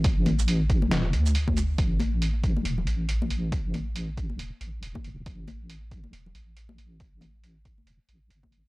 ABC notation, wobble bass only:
X:1
M:4/4
L:1/16
Q:"Swing 16ths" 1/4=138
K:C
V:1 name="Wobble bass" clef=bass
A,,,6 A,,,2 E,,,2 D,,6 | A,,,6 A,,,2 E,,,2 A,,,4 A,,,2- | A,,,6 A,,,2 E,,, z A,,,2 E,,, z E,,, E,,, | A,,,6 A,,,2 E,,,2 A,,,4 A,,,2- |
A,,,6 A,,,2 E,,, z A,,,2 G,,,2 A,,,2 |]